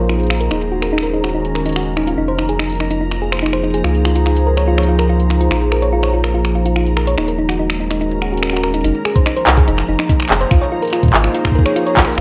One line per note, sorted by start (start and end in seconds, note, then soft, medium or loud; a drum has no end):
0.00 0.49 A#1 medium
0.00 0.51 F3 medium
0.00 1.18 A#3 medium
0.00 1.18 D#4 medium
0.00 1.18 G#4 medium
0.00 1.18 C5 medium
0.00 8.83 A#5 medium
0.09 0.16 F4 medium
0.09 finger snap medium
0.20 closed hi-hat soft
0.23 closed hi-hat soft
0.27 0.40 F4 medium
0.27 finger snap medium
0.27 closed hi-hat soft
0.30 closed hi-hat soft
0.34 closed hi-hat soft
0.37 0.47 A#4 medium
0.37 closed hi-hat soft
0.41 closed hi-hat medium
0.51 2.16 D#1 medium
0.51 2.18 D#3 medium
0.51 0.57 D#4 medium
0.51 finger snap soft
0.63 2.18 C#4 medium
0.72 2.18 G#3 medium
0.72 0.78 F#4 medium
0.82 0.86 A#4 medium
0.82 finger snap soft
0.82 closed hi-hat medium
0.93 1.02 D#4 loud
0.98 finger snap medium
1.03 1.13 A#4 medium
1.03 closed hi-hat soft
1.14 1.20 D#4 medium
1.24 1.33 F#4 medium
1.24 2.84 A#4 medium
1.24 finger snap soft
1.24 closed hi-hat medium
1.34 1.41 D#4 medium
1.45 closed hi-hat soft
1.55 1.59 A#4 medium
1.55 finger snap soft
1.66 1.72 D#4 medium
1.66 closed hi-hat medium
1.69 closed hi-hat soft
1.73 1.80 F#4 medium
1.73 finger snap medium
1.73 closed hi-hat soft
1.76 closed hi-hat soft
1.80 closed hi-hat soft
1.83 closed hi-hat soft
1.97 2.06 D#4 loud
1.97 finger snap soft
2.07 2.11 F4 medium
2.07 closed hi-hat medium
2.18 3.82 F1 medium
2.18 7.18 F3 medium
2.18 2.27 D#4 loud
2.28 2.38 C5 medium
2.38 7.74 A#3 medium
2.38 2.45 D#4 medium
2.38 finger snap soft
2.49 2.58 G#4 medium
2.49 closed hi-hat medium
2.59 2.66 D#4 medium
2.59 finger snap medium
2.70 closed hi-hat soft
2.72 7.84 D#4 medium
2.72 closed hi-hat soft
2.75 closed hi-hat soft
2.78 2.89 D#4 medium
2.78 finger snap soft
2.78 closed hi-hat soft
2.91 3.00 D#4 medium
2.91 7.84 G#4 medium
2.91 7.84 C5 medium
2.91 closed hi-hat medium
3.01 3.07 D#4 medium
3.11 finger snap soft
3.11 closed hi-hat soft
3.22 3.28 G#4 medium
3.32 3.36 C5 medium
3.32 finger snap medium
3.32 closed hi-hat medium
3.39 3.52 D#4 loud
3.39 finger snap medium
3.46 finger snap soft
3.53 3.63 C5 medium
3.53 finger snap soft
3.53 closed hi-hat soft
3.63 3.70 D#4 medium
3.74 3.83 G#4 medium
3.74 closed hi-hat medium
3.84 5.49 C#2 medium
3.84 3.91 F4 medium
3.84 finger snap soft
3.95 closed hi-hat soft
4.05 4.14 F4 medium
4.05 finger snap medium
4.16 4.25 F4 medium
4.16 closed hi-hat medium
4.26 4.32 F4 medium
4.26 finger snap soft
4.36 closed hi-hat soft
4.47 4.53 A#4 medium
4.57 4.61 C#5 medium
4.57 finger snap soft
4.57 closed hi-hat medium
4.68 4.77 F4 loud
4.78 4.88 C#5 medium
4.78 finger snap medium
4.83 closed hi-hat soft
4.88 4.95 F4 medium
4.99 5.08 A#4 medium
4.99 finger snap soft
4.99 closed hi-hat medium
5.09 5.16 F4 medium
5.20 closed hi-hat soft
5.30 5.39 F4 medium
5.30 finger snap soft
5.41 5.50 F4 medium
5.41 closed hi-hat medium
5.51 7.16 A#1 medium
5.51 5.57 F4 medium
5.51 finger snap medium
5.72 5.78 A#4 medium
5.72 finger snap medium
5.82 5.86 C#5 medium
5.82 closed hi-hat medium
5.93 6.02 F4 loud
6.03 6.13 C#5 medium
6.03 finger snap medium
6.03 closed hi-hat soft
6.13 6.20 F4 medium
6.24 6.33 A#4 medium
6.24 finger snap medium
6.24 closed hi-hat medium
6.34 6.41 F4 medium
6.45 finger snap medium
6.45 closed hi-hat soft
6.55 6.64 F4 medium
6.66 6.75 F4 medium
6.66 closed hi-hat medium
6.76 6.82 F4 medium
6.76 finger snap medium
6.86 closed hi-hat soft
6.97 7.03 A#4 medium
6.97 finger snap medium
7.07 7.11 C#5 medium
7.07 closed hi-hat medium
7.18 8.82 D#1 medium
7.18 8.84 D#3 medium
7.18 7.27 D#4 loud
7.18 finger snap medium
7.28 8.84 G#3 medium
7.28 7.38 A#4 medium
7.28 closed hi-hat soft
7.38 7.45 D#4 medium
7.49 8.84 C#4 medium
7.49 7.58 F#4 medium
7.49 finger snap medium
7.49 closed hi-hat medium
7.56 7.66 D#4 medium
7.56 9.51 A#4 medium
7.70 finger snap medium
7.70 closed hi-hat soft
7.80 7.89 D#4 medium
7.91 8.00 D#4 medium
7.91 finger snap medium
7.91 closed hi-hat medium
8.01 8.07 D#4 medium
8.11 closed hi-hat soft
8.22 8.31 F#4 medium
8.22 finger snap medium
8.32 8.39 F#4 medium
8.37 closed hi-hat medium
8.43 8.52 A#4 medium
8.43 finger snap medium
8.50 8.59 F#4 loud
8.50 finger snap medium
8.57 finger snap medium
8.64 8.70 A#4 medium
8.64 finger snap medium
8.74 8.80 D#4 medium
8.74 closed hi-hat medium
8.84 8.92 F1 loud
8.84 12.21 F3 medium
8.84 8.91 D#4 medium
8.84 12.21 A#5 medium
8.84 closed hi-hat medium
9.05 12.21 A#3 medium
9.05 9.11 G#4 medium
9.05 finger snap medium
9.16 9.19 C5 medium
9.16 kick loud
9.16 closed hi-hat medium
9.26 9.35 D#4 loud
9.26 finger snap medium
9.26 closed hi-hat medium
9.36 12.21 G#4 medium
9.36 9.46 C5 medium
9.36 closed hi-hat soft
9.47 9.62 C2 medium
9.47 9.53 D#4 medium
9.47 finger snap medium
9.47 clap loud
9.57 12.21 D#4 medium
9.57 9.67 G#4 medium
9.57 12.21 C5 medium
9.57 kick loud
9.57 closed hi-hat medium
9.68 9.82 F1 medium
9.68 9.74 D#4 medium
9.68 closed hi-hat medium
9.78 finger snap medium
9.78 closed hi-hat soft
9.89 9.96 F1 medium
9.89 9.98 D#4 medium
9.99 10.08 D#4 medium
9.99 finger snap medium
9.99 closed hi-hat medium
10.09 10.16 D#4 medium
10.09 kick loud
10.09 closed hi-hat medium
10.20 finger snap medium
10.20 closed hi-hat soft
10.22 finger snap soft
10.25 finger snap soft
10.28 10.45 F1 medium
10.28 10.37 G#4 medium
10.28 finger snap soft
10.28 clap loud
10.41 10.44 C5 medium
10.41 closed hi-hat medium
10.51 10.58 C#2 loud
10.51 10.60 F4 loud
10.51 finger snap medium
10.51 kick loud
10.51 closed hi-hat medium
10.61 10.71 C#5 medium
10.72 10.78 F4 medium
10.82 10.92 A#4 medium
10.82 closed hi-hat soft
10.85 closed hi-hat soft
10.88 closed hi-hat soft
10.90 10.99 F4 medium
10.90 finger snap medium
10.90 closed hi-hat soft
10.93 closed hi-hat medium
11.03 kick loud
11.03 closed hi-hat soft
11.06 kick medium
11.08 kick medium
11.11 11.28 G#1 medium
11.11 11.23 F4 medium
11.11 kick medium
11.11 clap loud
11.24 11.33 F4 medium
11.24 finger snap medium
11.24 closed hi-hat medium
11.34 11.41 F4 medium
11.34 closed hi-hat medium
11.45 finger snap medium
11.45 kick medium
11.45 closed hi-hat soft
11.52 11.62 A#4 medium
11.52 kick medium
11.59 kick loud
11.66 11.69 C#5 medium
11.66 finger snap medium
11.66 closed hi-hat medium
11.76 11.85 F4 loud
11.76 closed hi-hat medium
11.86 11.96 C#5 medium
11.86 closed hi-hat soft
11.97 12.04 A#1 medium
11.97 12.03 F4 medium
11.97 finger snap soft
11.97 kick loud
11.97 clap loud
12.00 finger snap soft
12.02 finger snap soft
12.05 12.17 A#4 medium
12.05 finger snap soft
12.05 closed hi-hat soft
12.10 closed hi-hat soft
12.13 closed hi-hat soft
12.15 12.21 F4 medium
12.15 closed hi-hat soft